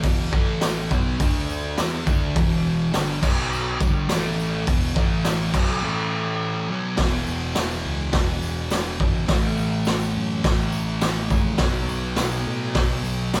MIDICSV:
0, 0, Header, 1, 4, 480
1, 0, Start_track
1, 0, Tempo, 578035
1, 34, Time_signature, 4, 2, 24, 8
1, 11127, End_track
2, 0, Start_track
2, 0, Title_t, "Distorted electric guitar"
2, 0, Program_c, 0, 30
2, 25, Note_on_c, 0, 40, 93
2, 34, Note_on_c, 0, 47, 111
2, 46, Note_on_c, 0, 52, 109
2, 256, Note_off_c, 0, 47, 0
2, 258, Note_off_c, 0, 52, 0
2, 259, Note_on_c, 0, 45, 89
2, 264, Note_off_c, 0, 40, 0
2, 268, Note_on_c, 0, 52, 96
2, 280, Note_on_c, 0, 57, 109
2, 742, Note_off_c, 0, 45, 0
2, 746, Note_off_c, 0, 52, 0
2, 752, Note_off_c, 0, 57, 0
2, 753, Note_on_c, 0, 47, 92
2, 762, Note_on_c, 0, 54, 97
2, 772, Note_on_c, 0, 59, 96
2, 989, Note_off_c, 0, 47, 0
2, 993, Note_off_c, 0, 54, 0
2, 993, Note_on_c, 0, 50, 97
2, 998, Note_off_c, 0, 59, 0
2, 1003, Note_on_c, 0, 57, 95
2, 1010, Note_on_c, 0, 62, 99
2, 1470, Note_off_c, 0, 50, 0
2, 1474, Note_off_c, 0, 57, 0
2, 1478, Note_off_c, 0, 62, 0
2, 1478, Note_on_c, 0, 52, 93
2, 1489, Note_on_c, 0, 59, 111
2, 1498, Note_on_c, 0, 64, 99
2, 1711, Note_off_c, 0, 52, 0
2, 1714, Note_on_c, 0, 50, 95
2, 1717, Note_off_c, 0, 59, 0
2, 1721, Note_on_c, 0, 57, 92
2, 1722, Note_off_c, 0, 64, 0
2, 1726, Note_on_c, 0, 62, 102
2, 1950, Note_off_c, 0, 50, 0
2, 1952, Note_on_c, 0, 40, 111
2, 1954, Note_off_c, 0, 57, 0
2, 1956, Note_off_c, 0, 62, 0
2, 1960, Note_on_c, 0, 47, 118
2, 1973, Note_on_c, 0, 52, 105
2, 2427, Note_off_c, 0, 40, 0
2, 2430, Note_on_c, 0, 43, 87
2, 2434, Note_off_c, 0, 47, 0
2, 2440, Note_off_c, 0, 52, 0
2, 2441, Note_on_c, 0, 50, 107
2, 2446, Note_on_c, 0, 55, 105
2, 2666, Note_off_c, 0, 50, 0
2, 2669, Note_off_c, 0, 43, 0
2, 2669, Note_on_c, 0, 47, 87
2, 2674, Note_off_c, 0, 55, 0
2, 2677, Note_on_c, 0, 54, 89
2, 2688, Note_on_c, 0, 59, 95
2, 3148, Note_off_c, 0, 47, 0
2, 3152, Note_off_c, 0, 54, 0
2, 3154, Note_on_c, 0, 43, 101
2, 3157, Note_off_c, 0, 59, 0
2, 3163, Note_on_c, 0, 50, 101
2, 3170, Note_on_c, 0, 55, 109
2, 3389, Note_off_c, 0, 50, 0
2, 3389, Note_on_c, 0, 45, 97
2, 3390, Note_off_c, 0, 43, 0
2, 3400, Note_off_c, 0, 55, 0
2, 3400, Note_on_c, 0, 52, 103
2, 3405, Note_on_c, 0, 57, 112
2, 3868, Note_off_c, 0, 45, 0
2, 3872, Note_on_c, 0, 40, 103
2, 3873, Note_off_c, 0, 52, 0
2, 3876, Note_off_c, 0, 57, 0
2, 3882, Note_on_c, 0, 47, 94
2, 3885, Note_on_c, 0, 52, 121
2, 4104, Note_off_c, 0, 47, 0
2, 4106, Note_off_c, 0, 52, 0
2, 4107, Note_on_c, 0, 45, 96
2, 4109, Note_off_c, 0, 40, 0
2, 4116, Note_on_c, 0, 52, 108
2, 4124, Note_on_c, 0, 57, 109
2, 4586, Note_off_c, 0, 45, 0
2, 4590, Note_on_c, 0, 47, 97
2, 4591, Note_off_c, 0, 52, 0
2, 4595, Note_off_c, 0, 57, 0
2, 4602, Note_on_c, 0, 54, 98
2, 4608, Note_on_c, 0, 59, 104
2, 4828, Note_off_c, 0, 47, 0
2, 4833, Note_off_c, 0, 54, 0
2, 4834, Note_on_c, 0, 45, 90
2, 4837, Note_off_c, 0, 59, 0
2, 4843, Note_on_c, 0, 52, 91
2, 4851, Note_on_c, 0, 57, 105
2, 5548, Note_off_c, 0, 45, 0
2, 5553, Note_off_c, 0, 52, 0
2, 5556, Note_on_c, 0, 47, 96
2, 5557, Note_off_c, 0, 57, 0
2, 5564, Note_on_c, 0, 54, 103
2, 5572, Note_on_c, 0, 59, 102
2, 5784, Note_on_c, 0, 40, 99
2, 5790, Note_off_c, 0, 47, 0
2, 5794, Note_off_c, 0, 54, 0
2, 5798, Note_off_c, 0, 59, 0
2, 5812, Note_on_c, 0, 47, 99
2, 5832, Note_on_c, 0, 52, 98
2, 7691, Note_off_c, 0, 47, 0
2, 7694, Note_on_c, 0, 45, 99
2, 7695, Note_off_c, 0, 40, 0
2, 7711, Note_off_c, 0, 52, 0
2, 7721, Note_on_c, 0, 52, 99
2, 7744, Note_on_c, 0, 57, 111
2, 9608, Note_off_c, 0, 45, 0
2, 9611, Note_on_c, 0, 47, 99
2, 9624, Note_off_c, 0, 52, 0
2, 9636, Note_off_c, 0, 57, 0
2, 9637, Note_on_c, 0, 54, 102
2, 9657, Note_on_c, 0, 59, 115
2, 11127, Note_off_c, 0, 47, 0
2, 11127, Note_off_c, 0, 54, 0
2, 11127, Note_off_c, 0, 59, 0
2, 11127, End_track
3, 0, Start_track
3, 0, Title_t, "Picked electric bass"
3, 0, Program_c, 1, 34
3, 27, Note_on_c, 1, 28, 92
3, 255, Note_off_c, 1, 28, 0
3, 273, Note_on_c, 1, 33, 99
3, 723, Note_off_c, 1, 33, 0
3, 758, Note_on_c, 1, 35, 106
3, 982, Note_off_c, 1, 35, 0
3, 1000, Note_on_c, 1, 38, 99
3, 1447, Note_off_c, 1, 38, 0
3, 1488, Note_on_c, 1, 40, 103
3, 1708, Note_off_c, 1, 40, 0
3, 1715, Note_on_c, 1, 38, 102
3, 1941, Note_off_c, 1, 38, 0
3, 1958, Note_on_c, 1, 28, 100
3, 2406, Note_off_c, 1, 28, 0
3, 2453, Note_on_c, 1, 31, 95
3, 2671, Note_off_c, 1, 31, 0
3, 2678, Note_on_c, 1, 35, 103
3, 3127, Note_off_c, 1, 35, 0
3, 3159, Note_on_c, 1, 31, 91
3, 3383, Note_off_c, 1, 31, 0
3, 3401, Note_on_c, 1, 33, 98
3, 3848, Note_off_c, 1, 33, 0
3, 3880, Note_on_c, 1, 28, 88
3, 4104, Note_off_c, 1, 28, 0
3, 4118, Note_on_c, 1, 33, 94
3, 4565, Note_off_c, 1, 33, 0
3, 4596, Note_on_c, 1, 35, 102
3, 4821, Note_off_c, 1, 35, 0
3, 5796, Note_on_c, 1, 28, 99
3, 6010, Note_off_c, 1, 28, 0
3, 6046, Note_on_c, 1, 28, 84
3, 6255, Note_off_c, 1, 28, 0
3, 6282, Note_on_c, 1, 28, 98
3, 6493, Note_off_c, 1, 28, 0
3, 6522, Note_on_c, 1, 37, 90
3, 6733, Note_off_c, 1, 37, 0
3, 6753, Note_on_c, 1, 28, 90
3, 6968, Note_off_c, 1, 28, 0
3, 7002, Note_on_c, 1, 28, 90
3, 7212, Note_off_c, 1, 28, 0
3, 7239, Note_on_c, 1, 28, 90
3, 7451, Note_off_c, 1, 28, 0
3, 7473, Note_on_c, 1, 32, 91
3, 7687, Note_off_c, 1, 32, 0
3, 7712, Note_on_c, 1, 33, 96
3, 7927, Note_off_c, 1, 33, 0
3, 7960, Note_on_c, 1, 33, 94
3, 8171, Note_off_c, 1, 33, 0
3, 8200, Note_on_c, 1, 33, 98
3, 8411, Note_off_c, 1, 33, 0
3, 8443, Note_on_c, 1, 42, 98
3, 8652, Note_off_c, 1, 42, 0
3, 8670, Note_on_c, 1, 33, 98
3, 8886, Note_off_c, 1, 33, 0
3, 8911, Note_on_c, 1, 33, 85
3, 9126, Note_off_c, 1, 33, 0
3, 9153, Note_on_c, 1, 33, 97
3, 9368, Note_off_c, 1, 33, 0
3, 9390, Note_on_c, 1, 34, 99
3, 9606, Note_off_c, 1, 34, 0
3, 9629, Note_on_c, 1, 35, 100
3, 9845, Note_off_c, 1, 35, 0
3, 9869, Note_on_c, 1, 35, 93
3, 10085, Note_off_c, 1, 35, 0
3, 10107, Note_on_c, 1, 35, 101
3, 10325, Note_off_c, 1, 35, 0
3, 10352, Note_on_c, 1, 45, 93
3, 10568, Note_off_c, 1, 45, 0
3, 10586, Note_on_c, 1, 35, 98
3, 10805, Note_off_c, 1, 35, 0
3, 10829, Note_on_c, 1, 35, 88
3, 11047, Note_off_c, 1, 35, 0
3, 11083, Note_on_c, 1, 35, 91
3, 11127, Note_off_c, 1, 35, 0
3, 11127, End_track
4, 0, Start_track
4, 0, Title_t, "Drums"
4, 26, Note_on_c, 9, 46, 58
4, 30, Note_on_c, 9, 36, 106
4, 30, Note_on_c, 9, 54, 30
4, 109, Note_off_c, 9, 46, 0
4, 113, Note_off_c, 9, 36, 0
4, 113, Note_off_c, 9, 54, 0
4, 272, Note_on_c, 9, 36, 112
4, 283, Note_on_c, 9, 54, 28
4, 355, Note_off_c, 9, 36, 0
4, 366, Note_off_c, 9, 54, 0
4, 508, Note_on_c, 9, 38, 116
4, 508, Note_on_c, 9, 46, 57
4, 517, Note_on_c, 9, 54, 105
4, 591, Note_off_c, 9, 38, 0
4, 591, Note_off_c, 9, 46, 0
4, 600, Note_off_c, 9, 54, 0
4, 755, Note_on_c, 9, 54, 67
4, 756, Note_on_c, 9, 36, 96
4, 838, Note_off_c, 9, 54, 0
4, 839, Note_off_c, 9, 36, 0
4, 996, Note_on_c, 9, 36, 107
4, 996, Note_on_c, 9, 46, 60
4, 999, Note_on_c, 9, 54, 71
4, 1079, Note_off_c, 9, 36, 0
4, 1079, Note_off_c, 9, 46, 0
4, 1082, Note_off_c, 9, 54, 0
4, 1242, Note_on_c, 9, 54, 77
4, 1325, Note_off_c, 9, 54, 0
4, 1475, Note_on_c, 9, 38, 116
4, 1475, Note_on_c, 9, 46, 60
4, 1479, Note_on_c, 9, 54, 98
4, 1558, Note_off_c, 9, 38, 0
4, 1558, Note_off_c, 9, 46, 0
4, 1562, Note_off_c, 9, 54, 0
4, 1719, Note_on_c, 9, 36, 109
4, 1719, Note_on_c, 9, 54, 78
4, 1802, Note_off_c, 9, 36, 0
4, 1802, Note_off_c, 9, 54, 0
4, 1959, Note_on_c, 9, 46, 61
4, 1960, Note_on_c, 9, 36, 122
4, 1965, Note_on_c, 9, 54, 29
4, 2042, Note_off_c, 9, 46, 0
4, 2043, Note_off_c, 9, 36, 0
4, 2049, Note_off_c, 9, 54, 0
4, 2206, Note_on_c, 9, 54, 28
4, 2289, Note_off_c, 9, 54, 0
4, 2439, Note_on_c, 9, 38, 121
4, 2439, Note_on_c, 9, 46, 69
4, 2446, Note_on_c, 9, 54, 106
4, 2522, Note_off_c, 9, 38, 0
4, 2522, Note_off_c, 9, 46, 0
4, 2529, Note_off_c, 9, 54, 0
4, 2678, Note_on_c, 9, 49, 106
4, 2681, Note_on_c, 9, 36, 108
4, 2687, Note_on_c, 9, 54, 73
4, 2761, Note_off_c, 9, 49, 0
4, 2764, Note_off_c, 9, 36, 0
4, 2770, Note_off_c, 9, 54, 0
4, 2930, Note_on_c, 9, 54, 70
4, 3013, Note_off_c, 9, 54, 0
4, 3160, Note_on_c, 9, 36, 123
4, 3167, Note_on_c, 9, 54, 72
4, 3243, Note_off_c, 9, 36, 0
4, 3250, Note_off_c, 9, 54, 0
4, 3397, Note_on_c, 9, 38, 118
4, 3397, Note_on_c, 9, 46, 63
4, 3407, Note_on_c, 9, 54, 101
4, 3480, Note_off_c, 9, 38, 0
4, 3480, Note_off_c, 9, 46, 0
4, 3490, Note_off_c, 9, 54, 0
4, 3649, Note_on_c, 9, 54, 78
4, 3732, Note_off_c, 9, 54, 0
4, 3880, Note_on_c, 9, 36, 115
4, 3883, Note_on_c, 9, 46, 63
4, 3890, Note_on_c, 9, 54, 30
4, 3963, Note_off_c, 9, 36, 0
4, 3966, Note_off_c, 9, 46, 0
4, 3973, Note_off_c, 9, 54, 0
4, 4119, Note_on_c, 9, 36, 111
4, 4123, Note_on_c, 9, 54, 31
4, 4202, Note_off_c, 9, 36, 0
4, 4206, Note_off_c, 9, 54, 0
4, 4357, Note_on_c, 9, 38, 111
4, 4357, Note_on_c, 9, 46, 61
4, 4365, Note_on_c, 9, 54, 113
4, 4440, Note_off_c, 9, 38, 0
4, 4440, Note_off_c, 9, 46, 0
4, 4448, Note_off_c, 9, 54, 0
4, 4598, Note_on_c, 9, 54, 76
4, 4599, Note_on_c, 9, 36, 107
4, 4600, Note_on_c, 9, 49, 101
4, 4681, Note_off_c, 9, 54, 0
4, 4682, Note_off_c, 9, 36, 0
4, 4683, Note_off_c, 9, 49, 0
4, 5790, Note_on_c, 9, 38, 118
4, 5790, Note_on_c, 9, 46, 71
4, 5795, Note_on_c, 9, 36, 108
4, 5873, Note_off_c, 9, 38, 0
4, 5873, Note_off_c, 9, 46, 0
4, 5878, Note_off_c, 9, 36, 0
4, 5915, Note_on_c, 9, 54, 30
4, 5998, Note_off_c, 9, 54, 0
4, 6034, Note_on_c, 9, 54, 75
4, 6117, Note_off_c, 9, 54, 0
4, 6157, Note_on_c, 9, 54, 31
4, 6240, Note_off_c, 9, 54, 0
4, 6272, Note_on_c, 9, 38, 115
4, 6272, Note_on_c, 9, 46, 63
4, 6276, Note_on_c, 9, 54, 114
4, 6355, Note_off_c, 9, 38, 0
4, 6355, Note_off_c, 9, 46, 0
4, 6359, Note_off_c, 9, 54, 0
4, 6399, Note_on_c, 9, 54, 70
4, 6482, Note_off_c, 9, 54, 0
4, 6750, Note_on_c, 9, 38, 114
4, 6750, Note_on_c, 9, 46, 71
4, 6752, Note_on_c, 9, 36, 108
4, 6833, Note_off_c, 9, 38, 0
4, 6833, Note_off_c, 9, 46, 0
4, 6836, Note_off_c, 9, 36, 0
4, 6997, Note_on_c, 9, 54, 80
4, 7080, Note_off_c, 9, 54, 0
4, 7117, Note_on_c, 9, 54, 29
4, 7200, Note_off_c, 9, 54, 0
4, 7228, Note_on_c, 9, 54, 111
4, 7235, Note_on_c, 9, 38, 120
4, 7235, Note_on_c, 9, 46, 66
4, 7311, Note_off_c, 9, 54, 0
4, 7318, Note_off_c, 9, 38, 0
4, 7318, Note_off_c, 9, 46, 0
4, 7473, Note_on_c, 9, 36, 99
4, 7556, Note_off_c, 9, 36, 0
4, 7710, Note_on_c, 9, 38, 111
4, 7710, Note_on_c, 9, 46, 65
4, 7713, Note_on_c, 9, 36, 117
4, 7793, Note_off_c, 9, 38, 0
4, 7793, Note_off_c, 9, 46, 0
4, 7796, Note_off_c, 9, 36, 0
4, 7840, Note_on_c, 9, 54, 27
4, 7923, Note_off_c, 9, 54, 0
4, 7949, Note_on_c, 9, 54, 78
4, 8032, Note_off_c, 9, 54, 0
4, 8064, Note_on_c, 9, 54, 31
4, 8147, Note_off_c, 9, 54, 0
4, 8179, Note_on_c, 9, 54, 112
4, 8195, Note_on_c, 9, 38, 114
4, 8195, Note_on_c, 9, 46, 62
4, 8262, Note_off_c, 9, 54, 0
4, 8278, Note_off_c, 9, 38, 0
4, 8278, Note_off_c, 9, 46, 0
4, 8300, Note_on_c, 9, 54, 76
4, 8383, Note_off_c, 9, 54, 0
4, 8672, Note_on_c, 9, 36, 116
4, 8674, Note_on_c, 9, 38, 107
4, 8674, Note_on_c, 9, 46, 60
4, 8755, Note_off_c, 9, 36, 0
4, 8757, Note_off_c, 9, 38, 0
4, 8757, Note_off_c, 9, 46, 0
4, 8904, Note_on_c, 9, 54, 84
4, 8987, Note_off_c, 9, 54, 0
4, 9030, Note_on_c, 9, 54, 29
4, 9113, Note_off_c, 9, 54, 0
4, 9146, Note_on_c, 9, 54, 105
4, 9148, Note_on_c, 9, 38, 125
4, 9148, Note_on_c, 9, 46, 63
4, 9229, Note_off_c, 9, 54, 0
4, 9231, Note_off_c, 9, 38, 0
4, 9231, Note_off_c, 9, 46, 0
4, 9268, Note_on_c, 9, 54, 31
4, 9351, Note_off_c, 9, 54, 0
4, 9387, Note_on_c, 9, 36, 94
4, 9388, Note_on_c, 9, 54, 76
4, 9470, Note_off_c, 9, 36, 0
4, 9471, Note_off_c, 9, 54, 0
4, 9616, Note_on_c, 9, 38, 127
4, 9616, Note_on_c, 9, 46, 69
4, 9626, Note_on_c, 9, 36, 122
4, 9699, Note_off_c, 9, 38, 0
4, 9699, Note_off_c, 9, 46, 0
4, 9709, Note_off_c, 9, 36, 0
4, 9872, Note_on_c, 9, 54, 78
4, 9955, Note_off_c, 9, 54, 0
4, 9991, Note_on_c, 9, 54, 30
4, 10074, Note_off_c, 9, 54, 0
4, 10101, Note_on_c, 9, 38, 116
4, 10101, Note_on_c, 9, 46, 68
4, 10110, Note_on_c, 9, 54, 104
4, 10184, Note_off_c, 9, 38, 0
4, 10184, Note_off_c, 9, 46, 0
4, 10193, Note_off_c, 9, 54, 0
4, 10228, Note_on_c, 9, 54, 80
4, 10311, Note_off_c, 9, 54, 0
4, 10586, Note_on_c, 9, 38, 119
4, 10586, Note_on_c, 9, 46, 70
4, 10589, Note_on_c, 9, 36, 112
4, 10669, Note_off_c, 9, 38, 0
4, 10669, Note_off_c, 9, 46, 0
4, 10672, Note_off_c, 9, 36, 0
4, 10833, Note_on_c, 9, 54, 76
4, 10917, Note_off_c, 9, 54, 0
4, 10959, Note_on_c, 9, 54, 29
4, 11042, Note_off_c, 9, 54, 0
4, 11075, Note_on_c, 9, 38, 116
4, 11075, Note_on_c, 9, 46, 63
4, 11076, Note_on_c, 9, 54, 102
4, 11127, Note_off_c, 9, 38, 0
4, 11127, Note_off_c, 9, 46, 0
4, 11127, Note_off_c, 9, 54, 0
4, 11127, End_track
0, 0, End_of_file